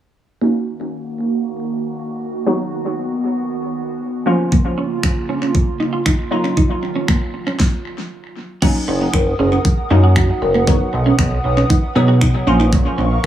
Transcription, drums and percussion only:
4.52 kick
5.03 finger snap, kick
5.55 kick
6.06 finger snap, kick
6.57 kick
7.08 finger snap, kick
7.60 kick, snare
8.62 kick, crash
9.14 finger snap, kick
9.65 kick
10.16 finger snap, kick
10.67 kick
11.19 finger snap, kick
11.70 kick
12.21 finger snap, kick
12.73 kick

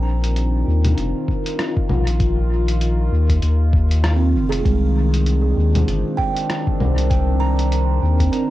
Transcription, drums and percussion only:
0.24 closed hi-hat
0.36 closed hi-hat
0.85 closed hi-hat, low conga
0.98 closed hi-hat
1.28 kick
1.46 closed hi-hat
1.59 cross-stick, closed hi-hat
1.77 kick
1.89 low conga
2.07 closed hi-hat
2.20 kick, closed hi-hat
2.68 closed hi-hat
2.81 closed hi-hat
3.30 kick, closed hi-hat
3.42 closed hi-hat
3.73 kick
3.91 closed hi-hat
4.04 cross-stick, closed hi-hat
4.52 closed hi-hat
4.65 kick, closed hi-hat
5.14 closed hi-hat
5.27 closed hi-hat
5.75 closed hi-hat, low conga
5.88 closed hi-hat
6.18 kick
6.37 closed hi-hat
6.50 cross-stick, closed hi-hat
6.67 kick
6.80 low conga
6.98 closed hi-hat
7.10 kick, closed hi-hat
7.59 closed hi-hat
7.72 closed hi-hat
8.20 kick, closed hi-hat
8.33 closed hi-hat

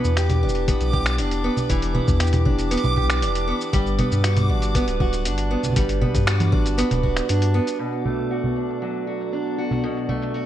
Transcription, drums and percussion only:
0.04 cabasa
0.17 finger snap, closed hi-hat, cabasa
0.30 closed hi-hat, low conga, cabasa
0.49 cabasa
0.55 closed hi-hat
0.68 kick, closed hi-hat, cabasa
0.81 closed hi-hat, cabasa
0.93 kick
1.06 finger snap, closed hi-hat, cabasa
1.18 closed hi-hat, cabasa
1.31 closed hi-hat, cabasa
1.57 low conga, cabasa
1.70 kick, closed hi-hat, cabasa
1.82 closed hi-hat, cabasa
1.95 low conga
2.08 kick, cabasa
2.20 finger snap, closed hi-hat
2.27 cabasa
2.33 closed hi-hat, low conga, cabasa
2.46 kick
2.59 closed hi-hat, cabasa
2.71 closed hi-hat, cabasa
2.77 closed hi-hat
2.84 low conga, cabasa
2.97 kick
3.10 finger snap, closed hi-hat, cabasa
3.22 closed hi-hat, cabasa
3.35 closed hi-hat, cabasa
3.61 cabasa
3.73 kick, closed hi-hat, cabasa
3.87 cabasa
3.99 closed hi-hat, low conga
4.12 cabasa
4.24 finger snap, closed hi-hat, cabasa
4.37 closed hi-hat, low conga, cabasa
4.62 closed hi-hat, cabasa
4.75 kick, closed hi-hat, cabasa
4.88 closed hi-hat, cabasa
5.00 kick
5.13 closed hi-hat, cabasa
5.25 closed hi-hat, cabasa
5.38 closed hi-hat, cabasa
5.63 low conga, cabasa
5.66 low conga
5.70 low conga
5.73 kick, closed hi-hat, low conga, cabasa
5.89 closed hi-hat, cabasa
6.02 low conga
6.15 kick, closed hi-hat, cabasa
6.27 finger snap, closed hi-hat, cabasa
6.40 closed hi-hat, low conga, cabasa
6.53 kick
6.66 closed hi-hat, cabasa
6.79 closed hi-hat, cabasa
6.91 closed hi-hat, low conga, cabasa
7.03 kick
7.17 finger snap, closed hi-hat, cabasa
7.29 closed hi-hat, cabasa
7.42 closed hi-hat, cabasa
7.67 closed hi-hat, cabasa
7.80 cabasa
7.93 cabasa
8.05 low conga
8.19 cabasa
8.31 cabasa
8.44 low conga, cabasa
8.70 cabasa
8.82 cabasa
8.95 cabasa
9.20 cabasa
9.33 cabasa
9.46 cabasa
9.71 low conga, cabasa
9.74 cabasa
9.78 cabasa
9.81 cabasa
9.84 cabasa
9.97 cabasa
10.09 low conga
10.22 cabasa
10.35 cabasa

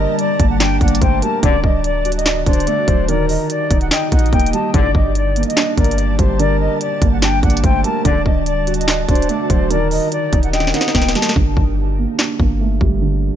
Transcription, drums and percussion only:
0.19 closed hi-hat
0.40 kick, closed hi-hat
0.60 snare, clap, closed hi-hat
0.81 kick, closed hi-hat
0.88 closed hi-hat
0.95 closed hi-hat
1.02 kick, closed hi-hat
1.22 closed hi-hat
1.43 kick, closed hi-hat
1.64 kick
1.84 closed hi-hat
2.05 closed hi-hat
2.12 closed hi-hat
2.19 closed hi-hat
2.26 snare, clap, closed hi-hat
2.46 kick, closed hi-hat
2.53 closed hi-hat
2.60 closed hi-hat
2.67 closed hi-hat
2.88 kick, closed hi-hat
3.09 closed hi-hat
3.29 open hi-hat
3.50 closed hi-hat
3.71 kick, closed hi-hat
3.81 closed hi-hat
3.91 snare, clap, closed hi-hat
4.12 kick, closed hi-hat
4.19 closed hi-hat
4.26 closed hi-hat
4.33 kick, closed hi-hat
4.40 closed hi-hat
4.46 closed hi-hat
4.53 closed hi-hat
4.74 kick, closed hi-hat
4.95 kick
5.15 closed hi-hat
5.36 closed hi-hat
5.43 closed hi-hat
5.50 closed hi-hat
5.57 snare, clap, closed hi-hat
5.78 kick, closed hi-hat
5.84 closed hi-hat
5.91 closed hi-hat
5.98 closed hi-hat
6.19 kick, closed hi-hat
6.40 closed hi-hat
6.81 closed hi-hat
7.02 kick, closed hi-hat
7.22 snare, clap, closed hi-hat
7.43 kick, closed hi-hat
7.50 closed hi-hat
7.57 closed hi-hat
7.64 kick, closed hi-hat
7.84 closed hi-hat
8.05 kick, closed hi-hat
8.26 kick
8.46 closed hi-hat
8.67 closed hi-hat
8.74 closed hi-hat
8.81 closed hi-hat
8.88 snare, clap, closed hi-hat
9.09 kick, closed hi-hat
9.15 closed hi-hat
9.22 closed hi-hat
9.29 closed hi-hat
9.50 kick, closed hi-hat
9.71 closed hi-hat
9.91 open hi-hat
10.12 closed hi-hat
10.33 kick, closed hi-hat
10.43 closed hi-hat
10.53 snare, closed hi-hat
10.60 snare
10.67 snare
10.74 snare, closed hi-hat
10.81 snare, closed hi-hat
10.88 snare, closed hi-hat
10.95 kick, snare, closed hi-hat
11.02 snare, closed hi-hat
11.08 snare, closed hi-hat
11.15 snare, closed hi-hat
11.22 snare
11.29 snare
11.36 kick
11.57 kick
12.19 snare, clap
12.40 kick
12.81 kick

